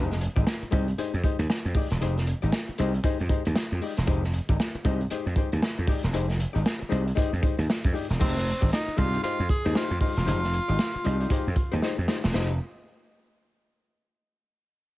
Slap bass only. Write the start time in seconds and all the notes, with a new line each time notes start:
Already playing: F1
0.36 G#1
0.62 muted slap bass stroke
0.72 C2
0.98 muted slap bass stroke
1.14 F2
1.39 D#2
1.65 F2
1.91 E1
2.01 F1
2.43 G#1
2.69 muted slap bass stroke
2.79 C2
3.20 F2
3.46 D#2
3.72 F2
3.98 E1
4.08 F1
4.49 G#1
4.75 muted slap bass stroke
4.85 C2
5.11 muted slap bass stroke
5.26 F2
5.53 D#2
5.78 F2
6.04 E1
6.13 F1
6.55 G#1
6.82 muted slap bass stroke
6.91 C2
7.33 F2
7.58 D#2
7.85 F2
8.10 E1
8.21 F1
8.62 G#1
8.88 muted slap bass stroke
8.98 C2
9.39 F2
9.66 D#2
9.91 F2
10.17 E1
10.28 F1
10.69 G#1
10.95 muted slap bass stroke
11.06 C2
11.47 F2
11.73 D#2
11.98 F2
12.24 E1
12.35 F1